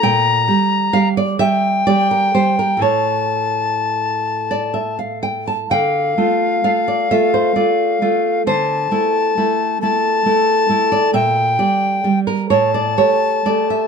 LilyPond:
<<
  \new Staff \with { instrumentName = "Recorder" } { \time 6/8 \key a \phrygian \tempo 4. = 43 bes''4 r8 g''4. | a''2~ a''16 r8. | f''2. | a''4. a''4. |
g''4 r8 a''4. | }
  \new Staff \with { instrumentName = "Nylon-string guitar" } { \time 6/8 \key a \phrygian << { g''4 f''16 d''16 e''8 d''16 bes'16 c''16 bes'16 | cis''4. r16 d''16 e''16 f''16 g''16 a''16 | g''4 f''16 d''16 e''16 c''16 d''4 | c''2~ c''8. d''16 |
e''8 d''8. bes'16 cis''16 d''16 cis''8 d''16 e''16 | } \\ { bes,8 <g g'>8 <g g'>8 <g g'>8 <g g'>8 <g g'>8 | <a, a e'>2. | d8 <a f'>8 <a f'>8 <a f'>8 <a f'>8 <a f'>8 | d8 <a e'>8 <a e'>8 <a e'>8 <a e'>8 <a e'>8 |
bes,8 <g g'>8 <g g'>8 a,8 <a g'>8 <a g'>8 | } >> }
>>